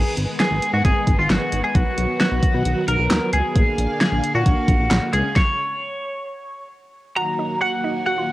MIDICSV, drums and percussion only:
0, 0, Header, 1, 2, 480
1, 0, Start_track
1, 0, Key_signature, -6, "minor"
1, 0, Tempo, 451128
1, 1862, Time_signature, 4, 2, 24, 8
1, 8857, End_track
2, 0, Start_track
2, 0, Title_t, "Drums"
2, 182, Note_on_c, 9, 42, 79
2, 288, Note_off_c, 9, 42, 0
2, 423, Note_on_c, 9, 38, 117
2, 423, Note_on_c, 9, 42, 77
2, 529, Note_off_c, 9, 38, 0
2, 530, Note_off_c, 9, 42, 0
2, 663, Note_on_c, 9, 42, 74
2, 770, Note_off_c, 9, 42, 0
2, 903, Note_on_c, 9, 36, 95
2, 903, Note_on_c, 9, 42, 79
2, 1009, Note_off_c, 9, 36, 0
2, 1009, Note_off_c, 9, 42, 0
2, 1140, Note_on_c, 9, 36, 89
2, 1142, Note_on_c, 9, 42, 70
2, 1247, Note_off_c, 9, 36, 0
2, 1249, Note_off_c, 9, 42, 0
2, 1383, Note_on_c, 9, 42, 76
2, 1384, Note_on_c, 9, 38, 103
2, 1489, Note_off_c, 9, 42, 0
2, 1490, Note_off_c, 9, 38, 0
2, 1621, Note_on_c, 9, 42, 73
2, 1727, Note_off_c, 9, 42, 0
2, 1863, Note_on_c, 9, 36, 101
2, 1863, Note_on_c, 9, 42, 72
2, 1969, Note_off_c, 9, 36, 0
2, 1969, Note_off_c, 9, 42, 0
2, 2103, Note_on_c, 9, 42, 81
2, 2209, Note_off_c, 9, 42, 0
2, 2344, Note_on_c, 9, 38, 118
2, 2345, Note_on_c, 9, 42, 74
2, 2450, Note_off_c, 9, 38, 0
2, 2451, Note_off_c, 9, 42, 0
2, 2581, Note_on_c, 9, 36, 82
2, 2584, Note_on_c, 9, 42, 78
2, 2687, Note_off_c, 9, 36, 0
2, 2691, Note_off_c, 9, 42, 0
2, 2823, Note_on_c, 9, 42, 80
2, 2929, Note_off_c, 9, 42, 0
2, 3063, Note_on_c, 9, 42, 71
2, 3169, Note_off_c, 9, 42, 0
2, 3303, Note_on_c, 9, 42, 77
2, 3304, Note_on_c, 9, 38, 105
2, 3304, Note_on_c, 9, 39, 88
2, 3409, Note_off_c, 9, 42, 0
2, 3410, Note_off_c, 9, 38, 0
2, 3410, Note_off_c, 9, 39, 0
2, 3540, Note_on_c, 9, 42, 70
2, 3647, Note_off_c, 9, 42, 0
2, 3782, Note_on_c, 9, 36, 101
2, 3782, Note_on_c, 9, 42, 72
2, 3889, Note_off_c, 9, 36, 0
2, 3889, Note_off_c, 9, 42, 0
2, 4024, Note_on_c, 9, 42, 80
2, 4130, Note_off_c, 9, 42, 0
2, 4264, Note_on_c, 9, 38, 118
2, 4265, Note_on_c, 9, 42, 81
2, 4370, Note_off_c, 9, 38, 0
2, 4371, Note_off_c, 9, 42, 0
2, 4505, Note_on_c, 9, 42, 74
2, 4612, Note_off_c, 9, 42, 0
2, 4743, Note_on_c, 9, 36, 95
2, 4743, Note_on_c, 9, 42, 81
2, 4850, Note_off_c, 9, 36, 0
2, 4850, Note_off_c, 9, 42, 0
2, 4981, Note_on_c, 9, 36, 85
2, 4983, Note_on_c, 9, 42, 72
2, 5087, Note_off_c, 9, 36, 0
2, 5090, Note_off_c, 9, 42, 0
2, 5223, Note_on_c, 9, 42, 76
2, 5224, Note_on_c, 9, 38, 104
2, 5224, Note_on_c, 9, 39, 89
2, 5330, Note_off_c, 9, 42, 0
2, 5331, Note_off_c, 9, 38, 0
2, 5331, Note_off_c, 9, 39, 0
2, 5461, Note_on_c, 9, 42, 73
2, 5567, Note_off_c, 9, 42, 0
2, 5702, Note_on_c, 9, 36, 107
2, 5702, Note_on_c, 9, 38, 88
2, 5808, Note_off_c, 9, 38, 0
2, 5809, Note_off_c, 9, 36, 0
2, 8857, End_track
0, 0, End_of_file